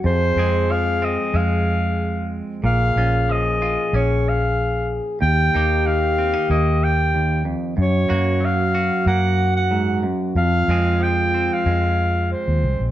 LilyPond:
<<
  \new Staff \with { instrumentName = "Clarinet" } { \time 4/4 \key f \minor \tempo 4 = 93 c''4 f''8 ees''8 f''4. r8 | f''4 ees''4 des''8 f''4 r8 | g''4 f''4 ees''8 g''4 r8 | des''4 f''4 ges''8. ges''8. r8 |
f''4 g''8. f''4~ f''16 c''4 | }
  \new Staff \with { instrumentName = "French horn" } { \time 4/4 \key f \minor aes'2.~ aes'8 r8 | aes'1 | g'2.~ g'8 r8 | ges'1 |
f'2.~ f'8 r8 | }
  \new Staff \with { instrumentName = "Clean electric guitar" } { \time 4/4 \key f \minor << { r8 <aes c' aes'>4 c'8 aes2 | r8 <des' f'>4 f'8 des'2 | r8 <bes ees' g'>4 c'16 ees'16 bes2 | r8 <bes ges'>4 ges'8 bes2 |
r8 <aes c' aes'>4 c'8 aes2 | } \\ { f,4 f2. | bes,4 f2. | ees,4 ees2 ees,8 f,8 | ges,4 ges2 aes,8 ges,8 |
f,4 f2. | } >> }
  \new Staff \with { instrumentName = "Fingered electric bass" } { \clef bass \time 4/4 \key f \minor f,8 f,4. f,2 | bes,,8 bes,,4. bes,,2 | ees,8 ees,4. ees,2 | ges,8 ges,4. ges,2 |
f,8 f,4. f,4~ f,16 ees,16 c,16 bes,,16 | }
>>